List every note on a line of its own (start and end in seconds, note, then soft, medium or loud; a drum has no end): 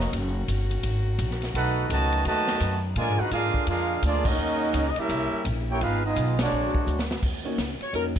0.00 0.12 F1 loud
0.00 0.13 C#3 medium
0.00 1.51 D#3 medium
0.00 0.13 F#3 medium
0.00 0.13 A#3 medium
0.00 1.52 A#3 medium
0.00 1.51 C#4 medium
0.00 0.15 F#4 medium
0.00 2.92 F#4 loud
0.00 0.15 C#5 medium
0.00 0.14 D#5 medium
0.00 0.15 A#5 medium
0.13 0.47 F#1 medium
0.13 kick soft
0.13 ride medium
0.48 0.83 G1 medium
0.48 kick soft
0.48 hi-hat pedal medium
0.48 ride medium
0.71 ride medium
0.83 1.18 G#1 medium
0.83 kick soft
0.83 ride medium
1.18 1.53 A#1 loud
1.18 kick soft
1.18 hi-hat pedal medium
1.18 ride medium
1.31 snare soft
1.42 snare soft
1.42 ride medium
1.54 1.89 B1 medium
1.54 2.95 D#3 medium
1.54 2.95 A3 medium
1.54 1.88 A3 medium
1.54 2.95 B3 medium
1.54 1.88 D#4 medium
1.54 1.88 D#4 loud
1.54 1.88 F#4 medium
1.54 1.88 A4 medium
1.54 1.88 B4 medium
1.54 1.89 F#5 loud
1.54 kick soft
1.54 ride medium
1.89 2.24 C#2 loud
1.89 2.23 D#3 medium
1.89 2.23 F#3 medium
1.89 2.23 A3 medium
1.89 2.24 F#4 loud
1.89 2.24 B4 medium
1.89 2.24 D#5 medium
1.89 2.24 A5 loud
1.89 kick soft
1.89 hi-hat pedal medium
1.89 ride medium
2.12 ride medium
2.25 2.60 D#2 medium
2.25 2.80 D#3 loud
2.25 2.80 F#3 loud
2.25 2.80 A3 loud
2.25 2.80 F#4 medium
2.25 2.80 B4 loud
2.25 2.80 D#5 loud
2.25 2.80 A5 loud
2.25 kick soft
2.25 ride medium
2.48 snare medium
2.60 2.95 F#2 loud
2.60 kick soft
2.60 hi-hat pedal medium
2.60 ride medium
2.96 3.08 A#2 medium
2.96 4.37 D3 medium
2.96 3.18 D3 medium
2.96 3.18 F3 medium
2.96 4.37 G#3 medium
2.96 3.18 G#3 medium
2.96 5.78 A#3 medium
2.96 4.37 F4 medium
2.96 3.18 F4 loud
2.96 3.18 A#4 medium
2.96 3.18 D5 medium
2.96 3.18 G#5 loud
2.96 kick soft
2.96 ride medium
3.08 3.18 G#2 medium
3.19 3.30 F2 medium
3.19 3.33 D#4 medium
3.19 3.32 F#4 medium
3.19 3.32 G#4 medium
3.19 3.33 B4 medium
3.19 3.33 F#5 loud
3.31 3.52 G#2 loud
3.31 3.65 G#3 medium
3.31 3.65 D4 medium
3.31 3.66 D4 medium
3.31 3.65 F4 medium
3.31 3.65 G#4 medium
3.31 3.66 A#4 medium
3.31 3.66 F5 loud
3.31 kick soft
3.31 hi-hat pedal medium
3.31 ride medium
3.54 muted upright bass stroke soft
3.54 kick medium
3.67 4.01 F2 medium
3.67 4.01 G#3 medium
3.67 4.01 D4 medium
3.67 4.02 D4 medium
3.67 4.01 F4 medium
3.67 4.01 G#4 medium
3.67 4.01 A#4 medium
3.67 4.02 F5 loud
3.67 kick soft
3.67 ride medium
4.02 4.37 D2 loud
4.02 4.26 F3 medium
4.02 4.26 G#3 medium
4.02 4.27 A#3 medium
4.02 4.26 D4 medium
4.02 4.27 F4 medium
4.02 4.27 G#4 medium
4.02 4.27 D5 loud
4.02 kick soft
4.02 hi-hat pedal medium
4.02 ride medium
4.25 4.88 F#3 medium
4.25 4.88 A#3 medium
4.25 4.89 C#4 medium
4.25 4.88 D#4 medium
4.25 4.88 F#4 medium
4.25 4.88 A#4 medium
4.25 4.88 D#5 loud
4.25 kick loud
4.25 crash medium
4.36 4.72 D#2 medium
4.36 5.78 C#3 medium
4.36 4.92 F#3 medium
4.36 4.92 D#4 medium
4.74 4.95 C#2 loud
4.74 kick soft
4.74 hi-hat pedal medium
4.74 ride medium
4.89 4.97 D#5 medium
4.96 5.45 G3 loud
4.96 5.46 A#3 loud
4.96 5.46 C#4 medium
4.96 5.46 E4 medium
4.96 5.46 G4 loud
4.96 5.46 A#4 medium
4.96 5.46 E5 loud
4.96 muted upright bass stroke soft
4.96 ride medium
5.09 5.30 C2 medium
5.09 5.80 C3 medium
5.09 5.79 E4 medium
5.09 kick soft
5.09 ride medium
5.32 muted upright bass stroke soft
5.45 5.79 A#1 loud
5.45 kick soft
5.45 hi-hat pedal medium
5.45 ride medium
5.69 5.80 A#3 medium
5.69 5.80 E4 medium
5.69 5.81 E4 medium
5.69 5.80 G4 medium
5.69 5.81 A#4 medium
5.69 5.81 C#5 medium
5.69 5.81 G5 loud
5.80 6.15 G#1 medium
5.80 6.50 D#3 medium
5.80 7.21 G#3 medium
5.80 6.04 G#3 medium
5.80 6.51 B3 medium
5.80 6.03 B3 medium
5.80 6.04 D#4 medium
5.80 6.50 F4 medium
5.80 6.04 F4 medium
5.80 6.04 G#4 medium
5.80 6.04 B4 medium
5.80 6.04 F5 medium
5.80 kick soft
5.80 ride medium
6.05 6.37 G#3 medium
6.05 6.37 B3 medium
6.05 6.37 D#4 medium
6.05 6.37 F4 medium
6.05 6.37 G#4 medium
6.05 6.37 D#5 medium
6.16 6.50 B1 loud
6.16 kick soft
6.16 hi-hat pedal medium
6.16 ride medium
6.39 7.06 F#3 medium
6.39 7.06 G#3 medium
6.39 7.07 G#3 medium
6.39 7.06 D4 medium
6.39 7.07 F#4 medium
6.39 7.07 C#5 medium
6.39 7.07 D5 loud
6.39 snare loud
6.39 ride medium
6.51 6.72 A#1 medium
6.51 7.21 D3 medium
6.51 7.22 A#3 medium
6.51 7.21 F#4 medium
6.74 muted upright bass stroke soft
6.74 kick medium
6.87 7.21 D2 loud
6.87 hi-hat pedal medium
6.99 snare medium
7.11 snare loud
7.23 7.57 D#2 medium
7.23 kick medium
7.23 crash medium
7.44 7.56 A#3 medium
7.44 7.56 C#4 medium
7.44 7.57 D#4 medium
7.44 7.57 F#4 medium
7.44 7.57 C#5 medium
7.58 7.79 C#2 medium
7.58 kick soft
7.58 snare medium
7.58 hi-hat pedal medium
7.58 ride medium
7.80 7.94 C#5 medium
7.80 muted upright bass stroke soft
7.80 ride soft
7.93 8.19 F2 medium
7.93 8.13 A#3 medium
7.93 8.13 C#4 soft
7.93 8.14 D#4 soft
7.93 8.14 F#4 soft
7.93 8.05 A#4 medium
7.93 8.14 C#5 medium
7.93 kick soft
7.93 ride medium
8.16 kick medium